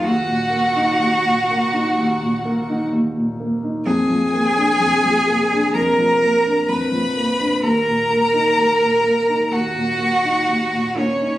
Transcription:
<<
  \new Staff \with { instrumentName = "Violin" } { \time 4/4 \key ees \minor \tempo 4 = 63 ges''2. r4 | aes''2 bes''4 ces'''4 | bes''2 ges''4. des''8 | }
  \new Staff \with { instrumentName = "Cello" } { \time 4/4 \key ees \minor ges'2. r4 | aes'2 bes'4 ces''4 | bes'2 ges'4. des'8 | }
  \new Staff \with { instrumentName = "Grand piano" } { \clef bass \time 4/4 \key ees \minor ees,16 bes,16 bes16 ees'16 ees,16 bes,16 bes16 ees'16 ees,16 bes,16 bes16 ees'16 ees,16 bes,16 bes16 ees'16 | f,16 f16 bes16 d'16 f,16 f16 bes16 d'16 f,16 f16 bes16 d'16 f,16 f16 bes16 d'16 | ees,16 bes,16 bes16 ees'16 ees,16 bes,16 bes16 ees'16 ees,16 bes,16 bes16 ees'16 ees,16 bes,16 bes16 ees'16 | }
>>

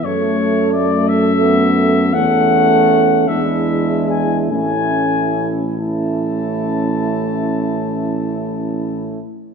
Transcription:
<<
  \new Staff \with { instrumentName = "Flugelhorn" } { \time 12/8 \key a \major \tempo 4. = 48 cis''4 d''8 e''4. fis''4. e''4 gis''8 | gis''4 r8 a''1 r8 | }
  \new Staff \with { instrumentName = "French horn section" } { \time 12/8 \key a \major a'2. r4. e'4. | e'4. e'1 r8 | }
  \new Staff \with { instrumentName = "Euphonium" } { \time 12/8 \key a \major a2 b4 cis'4. d'4. | cis'4. cis'1 r8 | }
  \new Staff \with { instrumentName = "Trombone" } { \time 12/8 \key a \major a2. a4. gis4. | a4. a1 r8 | }
  \new Staff \with { instrumentName = "Tuba" } { \clef bass \time 12/8 \key a \major fis,2. e,4. e,4. | a,,1~ a,,4. r8 | }
>>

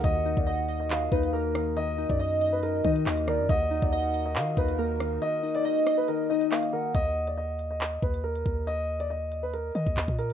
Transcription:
<<
  \new Staff \with { instrumentName = "Soft synth lead" } { \time 4/4 \key ees \minor \tempo 4 = 139 ges''2 f''4 r4 | ees''2.~ ees''8 d''8 | ges''2 f''4 r4 | ees''2. f''8 ges''8 |
r1 | r1 | }
  \new Staff \with { instrumentName = "Grand piano" } { \time 4/4 \key ees \minor ees''8. d''16 ees''8. ees''8. ces''8 bes'4 | ees''8. d''16 ees''8. ces''16 bes'8 ees''4 bes'8 | ees''8. d''16 ees''8. ees''8. ces''8 bes'4 | ees''8. d''16 ees''8. ces''16 bes'8 ees''4 bes'8 |
ees''8. d''16 ees''8. ees''8. ces''8 bes'4 | ees''8. d''16 ees''8. ces''16 bes'8 ees''4 bes'8 | }
  \new Staff \with { instrumentName = "Ambient pad" } { \time 4/4 \key ees \minor <ees ees' ges' bes'>1~ | <ees ees' ges' bes'>1 | <ees ees' ges' bes'>1~ | <ees ees' ges' bes'>1 |
r1 | r1 | }
  \new Staff \with { instrumentName = "Synth keys" } { \time 4/4 \key ees \minor ees8 ees'8 ees''8 ees''8 ees8 ees'8 bes8 ees8 | ees8 ees'8 ees''8 ees''8 ees8 ees'8 bes8 ees8 | ees8 ees'8 ees''8 ees''8 ees8 ees'8 bes8 ees8 | ees8 ees'8 ees''8 ees''8 ees8 ees'8 bes8 ees8 |
r1 | r1 | }
  \new Staff \with { instrumentName = "808-style bass" } { \clef bass \time 4/4 \key ees \minor ees,8. ees,4.~ ees,16 ees,4.~ | ees,8. ges,4.~ ges,16 ees8 ees,8. ges,16 | ees,8. ees,4~ ees,16 ees8 ees,4. | r1 |
ees,2~ ees,8 ees,4 ees,8~ | ees,2~ ees,8 ees16 ees,16 ees,16 bes,8. | }
  \new DrumStaff \with { instrumentName = "Drums" } \drummode { \time 4/4 <hh bd>8. bd16 r8 hh8 <hc hh>8 <hh bd>16 hh16 r8 <hh ss>8 | hh8. <hh bd>16 r8 hh8 hh8 bd16 hh16 hc16 hh16 ss8 | <hh bd>8. bd16 r8 hh8 <hc hh>8 <hh bd>16 hh16 r8 <hh ss>8 | hh8. hh16 r8 <hh ss>8 hh8. hh16 hc16 hh8. |
<hh bd>8. hh16 r8 hh8 <hc hh>8 bd16 hh16 r16 hh16 bd8 | hh8. hh16 r8 hh8 hh8 hh16 bd16 <hc hh>16 bd16 hh8 | }
>>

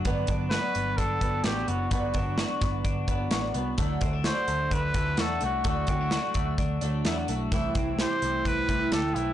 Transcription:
<<
  \new Staff \with { instrumentName = "Trumpet" } { \time 4/4 \key d \mixolydian \tempo 4 = 128 r4 b'4 a'4 g'8 fis'8 | fis'2 r2 | r4 c''4 b'4 a'8 fis'8 | fis'2 r2 |
r4 c''4 b'4 a'8 e'8 | }
  \new Staff \with { instrumentName = "Clean electric guitar" } { \time 4/4 \key d \mixolydian b8 d'8 fis'8 b8 d'8 b8 fis'8 b8 | b8 d'8 fis'8 b8 d'8 b8 fis'8 b8 | a8 c'16 d'16 fis'8 a8 d'8 a8 fis'8 a8 | a8 c'16 d'16 fis'8 a8 d'8 a8 e'16 fis'16 a8 |
e8 c'8 g'8 a8 c'8 a8 g'8 a8 | }
  \new Staff \with { instrumentName = "Twelve-string acoustic guitar" } { \time 4/4 \key d \mixolydian <g, d fis b d'>8 <fis b d'>8 <d fis b d'>4. <fis b d'>8 <d fis b d'>8 <fis b d'>8 | <g, d fis b d'>8 <fis b d'>8 <d fis b d'>4. <fis b d'>8 <d fis b d'>8 <fis b d'>8 | <d fis a d'>8 <fis a d'>8 <d fis a d'>4. <fis a d'>8 <d fis a d'>8 <fis a d'>8 | <d fis a d'>8 <fis a d'>8 <d fis a d'>4. <fis a d'>8 <d fis a d'>8 <fis a d'>8 |
<c g a e'>8 <g a e'>8 <c g a e'>4. <g a e'>8 <c g a e'>8 <g a e'>8 | }
  \new Staff \with { instrumentName = "Picked electric bass" } { \clef bass \time 4/4 \key d \mixolydian g,,8 g,,8. r16 g,,8 g,,8 g,,8 a,,8 fis,,8 | g,,8 g,,8. r16 g,,8 g,,8 g,,8 a,,8 c,8 | d,8 d,8. r16 d,8 d,8 d,8 e,8 c,8 | d,8 d,8. r16 d,8 d,8 d,8 e,8 b,,8 |
c,8 c,8. r16 c,8 c,8 c,8 d,8 b,,8 | }
  \new DrumStaff \with { instrumentName = "Drums" } \drummode { \time 4/4 <hh bd>8 <hh bd>8 <hh sn>8 hh8 <hh bd>8 <hh bd>8 <hh sn>8 hh8 | <hh bd>8 <hh bd>8 <hh sn>8 <hh bd sn>8 <hh bd>8 <hh bd>8 <hh sn>8 hh8 | <hh bd>8 <hh bd>8 <hh sn>8 hh8 <hh bd>8 <hh bd>8 <hh sn>8 hh8 | <hh bd>8 <hh bd>8 <hh sn>8 <hh bd>8 <hh bd>8 hh8 <hh sn>8 hh8 |
<hh bd>8 <hh bd>8 <hh sn>8 hh8 <hh bd>8 <hh bd>8 <hh sn>8 hh8 | }
>>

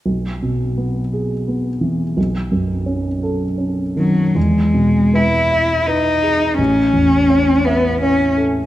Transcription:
<<
  \new Staff \with { instrumentName = "Cello" } { \time 3/4 \key e \major \tempo 4 = 84 r2. | r2 r8 fis8 | gis4 e'4 dis'4 | cis'4. b8 cis'8 r8 | }
  \new Staff \with { instrumentName = "Grand piano" } { \time 3/4 \key e \major b,,8 b,8 b8 gis'8 b8 e8 | b,,8 fis,8 cis'8 a'8 cis'8 dis8 | e,8 b,8 b'8 e''8 b'8 gis'8 | a,,8 e,8 cis''8 e''8 cis''8 a'8 | }
>>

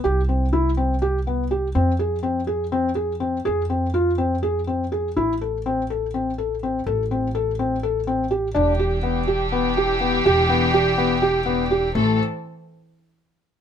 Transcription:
<<
  \new Staff \with { instrumentName = "Felt piano" } { \time 7/8 \key a \minor \tempo 4 = 123 g'8 c'8 e'8 c'8 g'8 b8 g'8 | c'8 aes'8 c'8 aes'8 c'8 aes'8 c'8 | aes'8 c'8 f'8 c'8 aes'8 c'8 aes'8 | e'8 a'8 c'8 a'8 c'8 a'8 c'8 |
a'8 c'8 a'8 c'8 a'8 c'8 g'8 | d'8 g'8 b8 g'8 b8 g'8 b8 | g'8 b8 g'8 b8 g'8 b8 g'8 | a8 r2. | }
  \new Staff \with { instrumentName = "String section" } { \time 7/8 \key a \minor r2. r8 | r2. r8 | r2. r8 | r2. r8 |
r2. r8 | <e d' g'>2.~ <e d' g'>8~ | <e d' g'>2.~ <e d' g'>8 | <e c' a'>8 r2. | }
  \new Staff \with { instrumentName = "Upright bass" } { \clef bass \time 7/8 \key a \minor c,2.~ c,8 | f,2.~ f,8 | f,2.~ f,8 | a,,2.~ a,,8 |
a,,2.~ a,,8 | e,,2.~ e,,8 | e,,2.~ e,,8 | a,,8 r2. | }
>>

